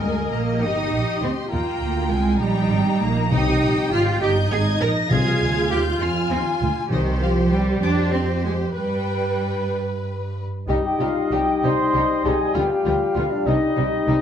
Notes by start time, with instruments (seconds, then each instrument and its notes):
Already playing: timpani G2, viola section A#4, violin section D#5
0.00 double bass section D2, cello section G#3, violin section G#5
0.32 double bass section A#1, cello section A#3, violin section A#5
0.62 double bass section G1, cello section D#4, viola section G4, violin section D#6
0.93 double bass section A#1
1.22 double bass section D2, cello section C4, violin section C6
1.52 double bass section D#2, cello section A#3, viola section F4, violin section G5 A#5
1.81 double bass section D2
2.10 double bass section C2, cello section G#3, violin section G#5
2.39 double bass section A#1, cello section G3, viola section D#4, violin section G5 A#5
2.69 double bass section G#1
3.01 double bass section A#1, cello section A#3, violin section A#5
3.32 double bass section C2, timpani C3, cello section D#4, viola section G4, violin section G5 D#6
3.62 double bass section A#1
3.92 double bass section G#1, cello section F4, violin section F6
4.22 double bass section G1, viola section D#4, cello section G4, violin section D#5 G6
4.52 double bass section G#1, cello section G#4, violin section G#6
4.81 double bass section A#1, cello section A#4, violin section A#6
5.11 double bass section C2, timpani C3, viola section F4, cello section G#4, violin section F5 G#6
5.41 double bass section D2
5.70 double bass section D#2, cello section G4, violin section G6
6.01 double bass section F2, cello section F4, violin section G#5 F6
6.31 double bass section D#2, cello section C4, violin section C6
6.61 double bass section D2
6.90 double bass section C2, timpani C3, cello section D#3, viola section G4, violin section C5 D#5
7.21 cello section F3, violin section F5
7.52 cello section G3, violin section G5
7.82 double bass section F2, cello section D4, violin section C5 D6
8.13 cello section C4, violin section C6
8.44 cello section G#3, violin section G#5
8.76 double bass section G2, cello section G3, viola section B4, violin section B4 G5
10.67 double bass section C2, cello section C3, french horn section G3 D#4, viola section G3, bassoon G3, violin section D#4 G4, clarinet D#4, flute section D#5, oboe D#5
10.84 clarinet G4, flute section G5
10.99 double bass section C2, cello section C3, viola section G3, violin section D#4 G4, clarinet F4, flute section F5
11.32 double bass section C2, cello section C3, viola section G3, violin section D#4 G4, clarinet G4, flute section G5
11.63 double bass section C2, cello section C3, viola section G3, violin section D#4 G4, clarinet C5, flute section C6
11.94 double bass section C2, cello section C3, viola section G3, violin section D#4 G4
12.24 double bass section C2, cello section C3, viola section G3, violin section D#4 G4, clarinet G#4, flute section G#5
12.54 double bass section D2, cello section D3, viola section G3, violin section B3 F4, french horn section F4, clarinet G4, oboe F5, flute section G5
12.85 double bass section D2, cello section D3, viola section G3, violin section B3 F4
13.15 double bass section D2, cello section D3, viola section G3, violin section B3 F4, clarinet F4, flute section F5
13.32 clarinet D4, flute section D5
13.46 double bass section C2, cello section C3, viola section G3, violin section C4 D#4, french horn section D#4, clarinet D#4, flute section D#5, oboe D#5
13.76 double bass section C2, cello section C3, viola section G3, violin section C4 D#4
14.07 double bass section C2, cello section C3, viola section G3, violin section C4 D#4